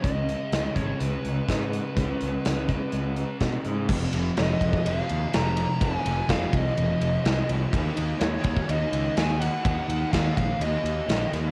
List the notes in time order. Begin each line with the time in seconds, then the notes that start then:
0.02 C#2 C#3 G#3 D#5, kick, closed hi-hat
0.07 C#4
0.29 closed hi-hat
0.52 C#2, snare, closed hi-hat
0.74 G#1 C#3 G#3 C#4 C#5, kick, closed hi-hat
0.99 C#2 B4, closed hi-hat
1.25 C#2, closed hi-hat
1.48 G#2, kick, snare, closed hi-hat
1.73 closed hi-hat
1.96 C#2 C#3 G#3 C#4, kick, closed hi-hat
2.21 C#2, closed hi-hat
2.45 C#2, snare, closed hi-hat
2.68 G#3 C#4, kick, closed hi-hat
2.72 C#3
2.92 C#2, closed hi-hat
3.16 closed hi-hat
3.40 B2, kick, snare, closed hi-hat
3.65 G#2, closed hi-hat
3.89 F1 F2 C3 F3, kick, crash
4.13 F1 C3 F3, ride
4.37 F1 F2 C3 F3 D#5, snare, ride
4.61 F1, kick, ride
4.73 kick
4.85 F1 F2 C3 F3 F5, ride
5.09 D#2, ride
5.33 F1 F2 C3 F3 A#5, snare, ride
5.57 ride
5.80 F1 F2 C3 F3 G#5, kick, ride
6.04 F1 C3 F3, ride
6.27 F1 F2 C3 F3 F5, kick, snare, ride
6.53 C2 D#5, kick, ride
6.75 F1 F2 C3 F3, ride
7.01 F1, ride
7.22 C2 F2 C3 F3, snare, ride
7.49 C2, ride
7.72 D#2 D#3 A#3 D#4, kick, ride
7.95 D#2 A#3 D#4, ride
8.19 D#2 D#3 A#3 D#4 C#5, snare, ride
8.44 D#2, kick, ride
8.57 kick
8.68 D#2 D#3 A#3 D#4 D#5, ride
8.92 C#2, ride
9.16 D#2 D#3 A#3 D#4 G#5, snare, ride
9.40 F#5, snare, ride
9.64 D#2 D#3 A#3 D#4, kick, ride
9.88 D#2 A#3 D#4, ride
10.12 D#2 D#3 A#3 D#4 F5, kick, snare, ride
10.37 A#1 F5, kick, ride
10.60 D#2 D#3 A#3 D#5, ride
10.64 D#4
10.84 D#2, ride
11.08 A#1 D#3 A#3, snare, ride
11.12 D#4
11.32 D#2, snare, ride